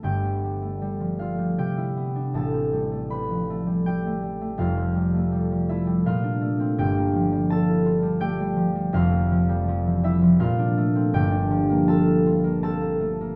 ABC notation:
X:1
M:3/4
L:1/16
Q:1/4=82
K:Gmix
V:1 name="Harp"
[GAga]6 [Ff]2 [Gg]4 | [Aa]4 [Bb]4 [Gg]4 | [Ff]6 [Ee]2 [Ff]4 | [Gg]4 [Aa]4 [Gg]4 |
[K:Gdor] [Ff]6 [Ee]2 [Ff]4 | [Gg]4 [Aa]4 [Aa]4 |]
V:2 name="Harp" clef=bass
[G,,,G,,A,B,] B, G, A, G, F, A, G, C, E B, D | [A,,,A,,] C G, A, G, F, A, G, A, A, G, A, | [F,,,F,,] C G, A, G, F, A, G, _B,, D A, C | [G,,,G,,] _B, F, G, F E F G, A, G, F, G, |
[K:Gdor] [F,,,F,,] A, F, G, F, E, G, F, B,, D A, C | [G,,,G,,] D F, B, F E F B, C B, A, B, |]